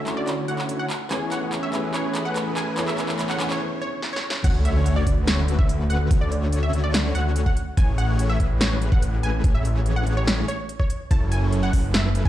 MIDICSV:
0, 0, Header, 1, 9, 480
1, 0, Start_track
1, 0, Tempo, 416667
1, 1276, Time_signature, 4, 2, 24, 8
1, 14157, End_track
2, 0, Start_track
2, 0, Title_t, "Synth pluck"
2, 0, Program_c, 0, 84
2, 195, Note_on_c, 0, 74, 92
2, 417, Note_off_c, 0, 74, 0
2, 555, Note_on_c, 0, 78, 93
2, 778, Note_off_c, 0, 78, 0
2, 914, Note_on_c, 0, 78, 93
2, 1137, Note_off_c, 0, 78, 0
2, 1275, Note_on_c, 0, 80, 97
2, 1424, Note_off_c, 0, 80, 0
2, 1516, Note_on_c, 0, 78, 96
2, 1738, Note_off_c, 0, 78, 0
2, 1876, Note_on_c, 0, 76, 95
2, 2098, Note_off_c, 0, 76, 0
2, 2235, Note_on_c, 0, 73, 94
2, 2458, Note_off_c, 0, 73, 0
2, 2595, Note_on_c, 0, 78, 97
2, 2817, Note_off_c, 0, 78, 0
2, 2954, Note_on_c, 0, 80, 93
2, 3177, Note_off_c, 0, 80, 0
2, 3314, Note_on_c, 0, 76, 92
2, 3611, Note_off_c, 0, 76, 0
2, 3796, Note_on_c, 0, 78, 91
2, 3944, Note_off_c, 0, 78, 0
2, 4036, Note_on_c, 0, 73, 96
2, 4258, Note_off_c, 0, 73, 0
2, 4395, Note_on_c, 0, 73, 97
2, 4618, Note_off_c, 0, 73, 0
2, 4756, Note_on_c, 0, 73, 96
2, 4978, Note_off_c, 0, 73, 0
2, 5116, Note_on_c, 0, 78, 102
2, 5264, Note_off_c, 0, 78, 0
2, 5357, Note_on_c, 0, 76, 94
2, 5579, Note_off_c, 0, 76, 0
2, 5716, Note_on_c, 0, 74, 94
2, 5938, Note_off_c, 0, 74, 0
2, 6074, Note_on_c, 0, 73, 96
2, 6297, Note_off_c, 0, 73, 0
2, 6435, Note_on_c, 0, 76, 97
2, 6658, Note_off_c, 0, 76, 0
2, 6795, Note_on_c, 0, 78, 96
2, 7017, Note_off_c, 0, 78, 0
2, 7156, Note_on_c, 0, 74, 92
2, 7452, Note_off_c, 0, 74, 0
2, 7636, Note_on_c, 0, 76, 91
2, 7784, Note_off_c, 0, 76, 0
2, 7876, Note_on_c, 0, 74, 95
2, 8098, Note_off_c, 0, 74, 0
2, 8235, Note_on_c, 0, 78, 98
2, 8458, Note_off_c, 0, 78, 0
2, 8595, Note_on_c, 0, 78, 93
2, 8818, Note_off_c, 0, 78, 0
2, 8954, Note_on_c, 0, 80, 99
2, 9103, Note_off_c, 0, 80, 0
2, 9193, Note_on_c, 0, 78, 100
2, 9417, Note_off_c, 0, 78, 0
2, 9555, Note_on_c, 0, 76, 98
2, 9778, Note_off_c, 0, 76, 0
2, 9915, Note_on_c, 0, 73, 97
2, 10137, Note_off_c, 0, 73, 0
2, 10275, Note_on_c, 0, 78, 98
2, 10498, Note_off_c, 0, 78, 0
2, 10636, Note_on_c, 0, 80, 97
2, 10858, Note_off_c, 0, 80, 0
2, 10997, Note_on_c, 0, 76, 92
2, 11292, Note_off_c, 0, 76, 0
2, 11477, Note_on_c, 0, 78, 90
2, 11625, Note_off_c, 0, 78, 0
2, 11716, Note_on_c, 0, 73, 92
2, 11938, Note_off_c, 0, 73, 0
2, 12077, Note_on_c, 0, 73, 96
2, 12298, Note_off_c, 0, 73, 0
2, 12437, Note_on_c, 0, 73, 96
2, 12658, Note_off_c, 0, 73, 0
2, 12797, Note_on_c, 0, 81, 100
2, 12945, Note_off_c, 0, 81, 0
2, 13036, Note_on_c, 0, 80, 93
2, 13258, Note_off_c, 0, 80, 0
2, 13396, Note_on_c, 0, 78, 94
2, 13618, Note_off_c, 0, 78, 0
2, 13758, Note_on_c, 0, 76, 97
2, 13979, Note_off_c, 0, 76, 0
2, 14117, Note_on_c, 0, 80, 97
2, 14157, Note_off_c, 0, 80, 0
2, 14157, End_track
3, 0, Start_track
3, 0, Title_t, "Felt piano"
3, 0, Program_c, 1, 0
3, 0, Control_c, 1, 64, 127
3, 0, Note_on_c, 1, 57, 95
3, 0, Note_on_c, 1, 61, 86
3, 0, Note_on_c, 1, 64, 86
3, 0, Note_on_c, 1, 66, 100
3, 52, Note_off_c, 1, 57, 0
3, 52, Note_on_c, 1, 57, 77
3, 68, Note_off_c, 1, 61, 0
3, 68, Note_on_c, 1, 61, 69
3, 83, Note_off_c, 1, 64, 0
3, 83, Note_on_c, 1, 64, 69
3, 99, Note_off_c, 1, 66, 0
3, 99, Note_on_c, 1, 66, 83
3, 1010, Note_off_c, 1, 57, 0
3, 1018, Note_off_c, 1, 61, 0
3, 1025, Note_off_c, 1, 64, 0
3, 1033, Note_off_c, 1, 66, 0
3, 1048, Control_c, 1, 64, 0
3, 1241, Control_c, 1, 64, 127
3, 1253, Note_on_c, 1, 59, 96
3, 1268, Note_on_c, 1, 61, 85
3, 1283, Note_on_c, 1, 64, 87
3, 1299, Note_on_c, 1, 68, 108
3, 1955, Note_off_c, 1, 59, 0
3, 1963, Note_off_c, 1, 61, 0
3, 1971, Note_off_c, 1, 64, 0
3, 1972, Note_on_c, 1, 59, 76
3, 1979, Note_off_c, 1, 68, 0
3, 1988, Note_on_c, 1, 61, 70
3, 2003, Note_on_c, 1, 64, 68
3, 2019, Note_on_c, 1, 68, 84
3, 3155, Note_off_c, 1, 59, 0
3, 3163, Note_off_c, 1, 61, 0
3, 3171, Note_off_c, 1, 64, 0
3, 3173, Note_on_c, 1, 59, 98
3, 3179, Note_off_c, 1, 68, 0
3, 3188, Note_on_c, 1, 61, 92
3, 3204, Note_on_c, 1, 64, 93
3, 3218, Note_on_c, 1, 68, 107
3, 3876, Note_off_c, 1, 59, 0
3, 3884, Note_off_c, 1, 61, 0
3, 3891, Note_off_c, 1, 64, 0
3, 3893, Note_on_c, 1, 59, 79
3, 3899, Note_off_c, 1, 68, 0
3, 3909, Note_on_c, 1, 61, 73
3, 3924, Note_on_c, 1, 64, 72
3, 3939, Note_on_c, 1, 68, 86
3, 4145, Note_off_c, 1, 59, 0
3, 4152, Note_off_c, 1, 61, 0
3, 4160, Note_off_c, 1, 64, 0
3, 4168, Note_off_c, 1, 68, 0
3, 5132, Control_c, 1, 64, 0
3, 14157, End_track
4, 0, Start_track
4, 0, Title_t, "Analog polysynth"
4, 0, Program_c, 2, 90
4, 76, Note_on_c, 2, 50, 87
4, 76, Note_on_c, 2, 57, 86
4, 76, Note_on_c, 2, 61, 83
4, 76, Note_on_c, 2, 66, 81
4, 76, Note_on_c, 2, 73, 99
4, 527, Note_off_c, 2, 50, 0
4, 527, Note_off_c, 2, 57, 0
4, 527, Note_off_c, 2, 61, 0
4, 527, Note_off_c, 2, 66, 0
4, 527, Note_off_c, 2, 73, 0
4, 556, Note_on_c, 2, 50, 84
4, 556, Note_on_c, 2, 57, 80
4, 556, Note_on_c, 2, 61, 79
4, 556, Note_on_c, 2, 66, 82
4, 556, Note_on_c, 2, 73, 99
4, 1022, Note_off_c, 2, 50, 0
4, 1022, Note_off_c, 2, 57, 0
4, 1022, Note_off_c, 2, 61, 0
4, 1022, Note_off_c, 2, 66, 0
4, 1022, Note_off_c, 2, 73, 0
4, 1276, Note_on_c, 2, 52, 89
4, 1276, Note_on_c, 2, 57, 80
4, 1276, Note_on_c, 2, 61, 82
4, 1276, Note_on_c, 2, 68, 83
4, 1276, Note_on_c, 2, 73, 101
4, 1967, Note_off_c, 2, 52, 0
4, 1967, Note_off_c, 2, 57, 0
4, 1967, Note_off_c, 2, 61, 0
4, 1967, Note_off_c, 2, 68, 0
4, 1967, Note_off_c, 2, 73, 0
4, 1996, Note_on_c, 2, 52, 91
4, 1996, Note_on_c, 2, 57, 82
4, 1996, Note_on_c, 2, 61, 82
4, 1996, Note_on_c, 2, 68, 81
4, 1996, Note_on_c, 2, 71, 99
4, 3167, Note_off_c, 2, 52, 0
4, 3167, Note_off_c, 2, 57, 0
4, 3167, Note_off_c, 2, 61, 0
4, 3167, Note_off_c, 2, 68, 0
4, 3167, Note_off_c, 2, 71, 0
4, 3195, Note_on_c, 2, 52, 95
4, 3195, Note_on_c, 2, 57, 89
4, 3195, Note_on_c, 2, 61, 89
4, 3195, Note_on_c, 2, 68, 88
4, 3195, Note_on_c, 2, 73, 103
4, 3887, Note_off_c, 2, 52, 0
4, 3887, Note_off_c, 2, 57, 0
4, 3887, Note_off_c, 2, 61, 0
4, 3887, Note_off_c, 2, 68, 0
4, 3887, Note_off_c, 2, 73, 0
4, 3915, Note_on_c, 2, 52, 89
4, 3915, Note_on_c, 2, 57, 83
4, 3915, Note_on_c, 2, 61, 84
4, 3915, Note_on_c, 2, 68, 86
4, 3915, Note_on_c, 2, 73, 102
4, 4156, Note_off_c, 2, 52, 0
4, 4156, Note_off_c, 2, 57, 0
4, 4156, Note_off_c, 2, 61, 0
4, 4156, Note_off_c, 2, 68, 0
4, 4156, Note_off_c, 2, 73, 0
4, 5116, Note_on_c, 2, 50, 93
4, 5116, Note_on_c, 2, 57, 83
4, 5116, Note_on_c, 2, 61, 84
4, 5116, Note_on_c, 2, 66, 85
4, 5116, Note_on_c, 2, 73, 104
4, 5807, Note_off_c, 2, 50, 0
4, 5807, Note_off_c, 2, 57, 0
4, 5807, Note_off_c, 2, 61, 0
4, 5807, Note_off_c, 2, 66, 0
4, 5807, Note_off_c, 2, 73, 0
4, 5836, Note_on_c, 2, 50, 93
4, 5836, Note_on_c, 2, 57, 84
4, 5836, Note_on_c, 2, 61, 84
4, 5836, Note_on_c, 2, 66, 85
4, 5836, Note_on_c, 2, 71, 103
4, 7007, Note_off_c, 2, 50, 0
4, 7007, Note_off_c, 2, 57, 0
4, 7007, Note_off_c, 2, 61, 0
4, 7007, Note_off_c, 2, 66, 0
4, 7007, Note_off_c, 2, 71, 0
4, 7036, Note_on_c, 2, 57, 91
4, 7036, Note_on_c, 2, 61, 86
4, 7037, Note_on_c, 2, 50, 98
4, 7037, Note_on_c, 2, 66, 88
4, 7037, Note_on_c, 2, 73, 107
4, 7727, Note_off_c, 2, 61, 0
4, 7728, Note_off_c, 2, 50, 0
4, 7728, Note_off_c, 2, 57, 0
4, 7728, Note_off_c, 2, 66, 0
4, 7728, Note_off_c, 2, 73, 0
4, 7756, Note_on_c, 2, 50, 91
4, 7756, Note_on_c, 2, 57, 83
4, 7756, Note_on_c, 2, 66, 86
4, 7756, Note_on_c, 2, 73, 102
4, 7757, Note_on_c, 2, 61, 84
4, 8207, Note_off_c, 2, 57, 0
4, 8207, Note_off_c, 2, 66, 0
4, 8207, Note_off_c, 2, 73, 0
4, 8208, Note_off_c, 2, 50, 0
4, 8208, Note_off_c, 2, 61, 0
4, 8236, Note_on_c, 2, 50, 88
4, 8236, Note_on_c, 2, 57, 83
4, 8236, Note_on_c, 2, 61, 83
4, 8236, Note_on_c, 2, 66, 80
4, 8236, Note_on_c, 2, 73, 100
4, 8702, Note_off_c, 2, 50, 0
4, 8702, Note_off_c, 2, 57, 0
4, 8702, Note_off_c, 2, 61, 0
4, 8702, Note_off_c, 2, 66, 0
4, 8702, Note_off_c, 2, 73, 0
4, 8955, Note_on_c, 2, 52, 89
4, 8955, Note_on_c, 2, 61, 85
4, 8955, Note_on_c, 2, 68, 84
4, 8955, Note_on_c, 2, 73, 101
4, 8956, Note_on_c, 2, 57, 81
4, 9647, Note_off_c, 2, 52, 0
4, 9647, Note_off_c, 2, 57, 0
4, 9647, Note_off_c, 2, 61, 0
4, 9647, Note_off_c, 2, 68, 0
4, 9647, Note_off_c, 2, 73, 0
4, 9675, Note_on_c, 2, 52, 94
4, 9675, Note_on_c, 2, 68, 82
4, 9676, Note_on_c, 2, 57, 86
4, 9676, Note_on_c, 2, 61, 82
4, 9676, Note_on_c, 2, 71, 103
4, 10847, Note_off_c, 2, 52, 0
4, 10847, Note_off_c, 2, 57, 0
4, 10847, Note_off_c, 2, 61, 0
4, 10847, Note_off_c, 2, 68, 0
4, 10847, Note_off_c, 2, 71, 0
4, 10876, Note_on_c, 2, 52, 98
4, 10876, Note_on_c, 2, 57, 92
4, 10876, Note_on_c, 2, 61, 88
4, 10876, Note_on_c, 2, 68, 89
4, 10876, Note_on_c, 2, 73, 105
4, 11567, Note_off_c, 2, 52, 0
4, 11567, Note_off_c, 2, 57, 0
4, 11567, Note_off_c, 2, 61, 0
4, 11567, Note_off_c, 2, 68, 0
4, 11567, Note_off_c, 2, 73, 0
4, 11596, Note_on_c, 2, 52, 89
4, 11596, Note_on_c, 2, 57, 82
4, 11596, Note_on_c, 2, 61, 86
4, 11596, Note_on_c, 2, 73, 106
4, 11597, Note_on_c, 2, 68, 88
4, 12047, Note_off_c, 2, 52, 0
4, 12047, Note_off_c, 2, 73, 0
4, 12048, Note_off_c, 2, 57, 0
4, 12048, Note_off_c, 2, 61, 0
4, 12048, Note_off_c, 2, 68, 0
4, 12797, Note_on_c, 2, 54, 93
4, 12797, Note_on_c, 2, 61, 81
4, 12797, Note_on_c, 2, 64, 85
4, 12797, Note_on_c, 2, 69, 82
4, 12797, Note_on_c, 2, 73, 98
4, 13488, Note_off_c, 2, 54, 0
4, 13488, Note_off_c, 2, 61, 0
4, 13488, Note_off_c, 2, 64, 0
4, 13488, Note_off_c, 2, 69, 0
4, 13488, Note_off_c, 2, 73, 0
4, 13517, Note_on_c, 2, 54, 92
4, 13517, Note_on_c, 2, 61, 81
4, 13517, Note_on_c, 2, 64, 81
4, 13517, Note_on_c, 2, 69, 83
4, 13517, Note_on_c, 2, 71, 98
4, 14157, Note_off_c, 2, 54, 0
4, 14157, Note_off_c, 2, 61, 0
4, 14157, Note_off_c, 2, 64, 0
4, 14157, Note_off_c, 2, 69, 0
4, 14157, Note_off_c, 2, 71, 0
4, 14157, End_track
5, 0, Start_track
5, 0, Title_t, "String section"
5, 0, Program_c, 3, 48
5, 0, Note_on_c, 3, 50, 78
5, 0, Note_on_c, 3, 57, 72
5, 0, Note_on_c, 3, 61, 72
5, 0, Note_on_c, 3, 64, 68
5, 0, Note_on_c, 3, 66, 83
5, 1000, Note_off_c, 3, 50, 0
5, 1000, Note_off_c, 3, 61, 0
5, 1000, Note_off_c, 3, 64, 0
5, 1000, Note_off_c, 3, 66, 0
5, 1036, Note_on_c, 3, 61, 88
5, 1036, Note_on_c, 3, 68, 79
5, 4110, Note_off_c, 3, 57, 0
5, 4125, Note_off_c, 3, 61, 0
5, 4125, Note_off_c, 3, 68, 0
5, 14157, End_track
6, 0, Start_track
6, 0, Title_t, "Detuned saw bass"
6, 0, Program_c, 4, 39
6, 76, Note_on_c, 4, 38, 100
6, 532, Note_off_c, 4, 38, 0
6, 556, Note_on_c, 4, 38, 98
6, 998, Note_off_c, 4, 38, 0
6, 1276, Note_on_c, 4, 33, 96
6, 1972, Note_off_c, 4, 33, 0
6, 1996, Note_on_c, 4, 33, 103
6, 3172, Note_off_c, 4, 33, 0
6, 3196, Note_on_c, 4, 33, 92
6, 3892, Note_off_c, 4, 33, 0
6, 3916, Note_on_c, 4, 33, 101
6, 4156, Note_off_c, 4, 33, 0
6, 5117, Note_on_c, 4, 38, 98
6, 5813, Note_off_c, 4, 38, 0
6, 5836, Note_on_c, 4, 38, 101
6, 7012, Note_off_c, 4, 38, 0
6, 7757, Note_on_c, 4, 38, 97
6, 8212, Note_off_c, 4, 38, 0
6, 8237, Note_on_c, 4, 38, 97
6, 8678, Note_off_c, 4, 38, 0
6, 8956, Note_on_c, 4, 33, 94
6, 9652, Note_off_c, 4, 33, 0
6, 10876, Note_on_c, 4, 33, 96
6, 11572, Note_off_c, 4, 33, 0
6, 11596, Note_on_c, 4, 33, 102
6, 12023, Note_off_c, 4, 33, 0
6, 12797, Note_on_c, 4, 30, 97
6, 13492, Note_off_c, 4, 30, 0
6, 13516, Note_on_c, 4, 30, 100
6, 14157, Note_off_c, 4, 30, 0
6, 14157, End_track
7, 0, Start_track
7, 0, Title_t, "Riser"
7, 0, Program_c, 5, 103
7, 0, Note_on_c, 5, 60, 74
7, 4157, Note_off_c, 5, 60, 0
7, 14157, End_track
8, 0, Start_track
8, 0, Title_t, "Sub drop"
8, 0, Program_c, 6, 103
8, 5117, Note_on_c, 6, 60, 75
8, 7037, Note_off_c, 6, 60, 0
8, 14157, End_track
9, 0, Start_track
9, 0, Title_t, "Drums"
9, 75, Note_on_c, 9, 39, 62
9, 75, Note_on_c, 9, 42, 58
9, 190, Note_off_c, 9, 39, 0
9, 190, Note_off_c, 9, 42, 0
9, 315, Note_on_c, 9, 39, 63
9, 315, Note_on_c, 9, 42, 75
9, 430, Note_off_c, 9, 39, 0
9, 430, Note_off_c, 9, 42, 0
9, 555, Note_on_c, 9, 42, 65
9, 670, Note_off_c, 9, 42, 0
9, 675, Note_on_c, 9, 39, 60
9, 790, Note_off_c, 9, 39, 0
9, 795, Note_on_c, 9, 42, 77
9, 910, Note_off_c, 9, 42, 0
9, 1035, Note_on_c, 9, 39, 73
9, 1035, Note_on_c, 9, 42, 65
9, 1151, Note_off_c, 9, 39, 0
9, 1151, Note_off_c, 9, 42, 0
9, 1274, Note_on_c, 9, 39, 71
9, 1274, Note_on_c, 9, 42, 74
9, 1390, Note_off_c, 9, 39, 0
9, 1390, Note_off_c, 9, 42, 0
9, 1515, Note_on_c, 9, 39, 71
9, 1515, Note_on_c, 9, 42, 63
9, 1630, Note_off_c, 9, 39, 0
9, 1630, Note_off_c, 9, 42, 0
9, 1755, Note_on_c, 9, 39, 76
9, 1755, Note_on_c, 9, 42, 72
9, 1870, Note_off_c, 9, 39, 0
9, 1870, Note_off_c, 9, 42, 0
9, 1996, Note_on_c, 9, 39, 81
9, 1996, Note_on_c, 9, 42, 60
9, 2111, Note_off_c, 9, 39, 0
9, 2111, Note_off_c, 9, 42, 0
9, 2236, Note_on_c, 9, 39, 79
9, 2236, Note_on_c, 9, 42, 74
9, 2351, Note_off_c, 9, 39, 0
9, 2351, Note_off_c, 9, 42, 0
9, 2476, Note_on_c, 9, 39, 85
9, 2476, Note_on_c, 9, 42, 63
9, 2591, Note_off_c, 9, 39, 0
9, 2591, Note_off_c, 9, 42, 0
9, 2716, Note_on_c, 9, 39, 87
9, 2716, Note_on_c, 9, 42, 78
9, 2831, Note_off_c, 9, 39, 0
9, 2831, Note_off_c, 9, 42, 0
9, 2956, Note_on_c, 9, 39, 92
9, 2956, Note_on_c, 9, 42, 67
9, 3071, Note_off_c, 9, 39, 0
9, 3071, Note_off_c, 9, 42, 0
9, 3196, Note_on_c, 9, 39, 91
9, 3196, Note_on_c, 9, 42, 74
9, 3311, Note_off_c, 9, 39, 0
9, 3311, Note_off_c, 9, 42, 0
9, 3316, Note_on_c, 9, 39, 78
9, 3431, Note_off_c, 9, 39, 0
9, 3436, Note_on_c, 9, 39, 89
9, 3436, Note_on_c, 9, 42, 60
9, 3551, Note_off_c, 9, 39, 0
9, 3551, Note_off_c, 9, 42, 0
9, 3556, Note_on_c, 9, 39, 85
9, 3671, Note_off_c, 9, 39, 0
9, 3675, Note_on_c, 9, 39, 89
9, 3675, Note_on_c, 9, 42, 75
9, 3791, Note_off_c, 9, 39, 0
9, 3791, Note_off_c, 9, 42, 0
9, 3795, Note_on_c, 9, 39, 83
9, 3910, Note_off_c, 9, 39, 0
9, 3916, Note_on_c, 9, 39, 100
9, 3916, Note_on_c, 9, 42, 59
9, 4031, Note_off_c, 9, 39, 0
9, 4031, Note_off_c, 9, 42, 0
9, 4036, Note_on_c, 9, 39, 89
9, 4151, Note_off_c, 9, 39, 0
9, 4637, Note_on_c, 9, 38, 70
9, 4752, Note_off_c, 9, 38, 0
9, 4796, Note_on_c, 9, 38, 80
9, 4911, Note_off_c, 9, 38, 0
9, 4957, Note_on_c, 9, 38, 99
9, 5072, Note_off_c, 9, 38, 0
9, 5116, Note_on_c, 9, 36, 122
9, 5116, Note_on_c, 9, 42, 83
9, 5116, Note_on_c, 9, 49, 99
9, 5231, Note_off_c, 9, 42, 0
9, 5231, Note_off_c, 9, 49, 0
9, 5232, Note_off_c, 9, 36, 0
9, 5357, Note_on_c, 9, 42, 66
9, 5472, Note_off_c, 9, 42, 0
9, 5597, Note_on_c, 9, 42, 81
9, 5712, Note_off_c, 9, 42, 0
9, 5836, Note_on_c, 9, 36, 63
9, 5837, Note_on_c, 9, 42, 63
9, 5952, Note_off_c, 9, 36, 0
9, 5952, Note_off_c, 9, 42, 0
9, 6076, Note_on_c, 9, 38, 118
9, 6076, Note_on_c, 9, 42, 84
9, 6192, Note_off_c, 9, 38, 0
9, 6192, Note_off_c, 9, 42, 0
9, 6316, Note_on_c, 9, 42, 69
9, 6431, Note_off_c, 9, 42, 0
9, 6436, Note_on_c, 9, 36, 108
9, 6551, Note_off_c, 9, 36, 0
9, 6557, Note_on_c, 9, 42, 84
9, 6672, Note_off_c, 9, 42, 0
9, 6797, Note_on_c, 9, 42, 71
9, 6912, Note_off_c, 9, 42, 0
9, 7036, Note_on_c, 9, 36, 120
9, 7037, Note_on_c, 9, 42, 77
9, 7151, Note_off_c, 9, 36, 0
9, 7152, Note_off_c, 9, 42, 0
9, 7276, Note_on_c, 9, 42, 66
9, 7391, Note_off_c, 9, 42, 0
9, 7517, Note_on_c, 9, 42, 76
9, 7632, Note_off_c, 9, 42, 0
9, 7756, Note_on_c, 9, 42, 61
9, 7871, Note_off_c, 9, 42, 0
9, 7996, Note_on_c, 9, 38, 117
9, 7996, Note_on_c, 9, 42, 82
9, 8111, Note_off_c, 9, 38, 0
9, 8111, Note_off_c, 9, 42, 0
9, 8236, Note_on_c, 9, 42, 69
9, 8352, Note_off_c, 9, 42, 0
9, 8476, Note_on_c, 9, 42, 82
9, 8591, Note_off_c, 9, 42, 0
9, 8596, Note_on_c, 9, 36, 63
9, 8711, Note_off_c, 9, 36, 0
9, 8716, Note_on_c, 9, 42, 68
9, 8831, Note_off_c, 9, 42, 0
9, 8955, Note_on_c, 9, 42, 75
9, 8956, Note_on_c, 9, 36, 126
9, 9071, Note_off_c, 9, 36, 0
9, 9071, Note_off_c, 9, 42, 0
9, 9195, Note_on_c, 9, 42, 62
9, 9310, Note_off_c, 9, 42, 0
9, 9436, Note_on_c, 9, 42, 75
9, 9551, Note_off_c, 9, 42, 0
9, 9676, Note_on_c, 9, 36, 65
9, 9676, Note_on_c, 9, 42, 61
9, 9791, Note_off_c, 9, 36, 0
9, 9791, Note_off_c, 9, 42, 0
9, 9916, Note_on_c, 9, 38, 125
9, 9916, Note_on_c, 9, 42, 74
9, 10031, Note_off_c, 9, 38, 0
9, 10031, Note_off_c, 9, 42, 0
9, 10156, Note_on_c, 9, 42, 66
9, 10271, Note_off_c, 9, 42, 0
9, 10276, Note_on_c, 9, 36, 110
9, 10391, Note_off_c, 9, 36, 0
9, 10396, Note_on_c, 9, 42, 77
9, 10511, Note_off_c, 9, 42, 0
9, 10636, Note_on_c, 9, 42, 66
9, 10751, Note_off_c, 9, 42, 0
9, 10876, Note_on_c, 9, 36, 126
9, 10876, Note_on_c, 9, 42, 74
9, 10991, Note_off_c, 9, 36, 0
9, 10991, Note_off_c, 9, 42, 0
9, 11116, Note_on_c, 9, 42, 61
9, 11231, Note_off_c, 9, 42, 0
9, 11356, Note_on_c, 9, 42, 73
9, 11471, Note_off_c, 9, 42, 0
9, 11596, Note_on_c, 9, 42, 59
9, 11711, Note_off_c, 9, 42, 0
9, 11836, Note_on_c, 9, 38, 123
9, 11836, Note_on_c, 9, 42, 74
9, 11951, Note_off_c, 9, 38, 0
9, 11951, Note_off_c, 9, 42, 0
9, 12076, Note_on_c, 9, 42, 61
9, 12192, Note_off_c, 9, 42, 0
9, 12316, Note_on_c, 9, 42, 76
9, 12432, Note_off_c, 9, 42, 0
9, 12437, Note_on_c, 9, 36, 65
9, 12552, Note_off_c, 9, 36, 0
9, 12556, Note_on_c, 9, 42, 66
9, 12671, Note_off_c, 9, 42, 0
9, 12796, Note_on_c, 9, 36, 116
9, 12796, Note_on_c, 9, 42, 73
9, 12911, Note_off_c, 9, 42, 0
9, 12912, Note_off_c, 9, 36, 0
9, 13036, Note_on_c, 9, 42, 62
9, 13151, Note_off_c, 9, 42, 0
9, 13276, Note_on_c, 9, 42, 72
9, 13391, Note_off_c, 9, 42, 0
9, 13516, Note_on_c, 9, 46, 93
9, 13517, Note_on_c, 9, 36, 61
9, 13631, Note_off_c, 9, 46, 0
9, 13632, Note_off_c, 9, 36, 0
9, 13756, Note_on_c, 9, 38, 115
9, 13756, Note_on_c, 9, 42, 72
9, 13872, Note_off_c, 9, 38, 0
9, 13872, Note_off_c, 9, 42, 0
9, 13996, Note_on_c, 9, 42, 64
9, 14111, Note_off_c, 9, 42, 0
9, 14116, Note_on_c, 9, 36, 109
9, 14157, Note_off_c, 9, 36, 0
9, 14157, End_track
0, 0, End_of_file